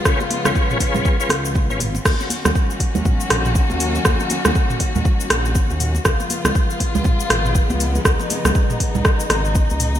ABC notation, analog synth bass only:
X:1
M:4/4
L:1/16
Q:"Swing 16ths" 1/4=120
K:Ebm
V:1 name="Analog synth bass" clef=bass
D,, z2 D,, z3 D,, z2 D,,3 A,,,2 z | E,, z2 E,, z3 E,, z2 B,,,2 z E,,2 z | E,, z2 E,, z3 E,, z2 B,,,2 z E,,2 z | D,, z2 D,, z3 D,, z2 A,,,2 z D,,2 z |
D,, z2 D,, z3 D,, z2 A,,,2 z D,,2 z |]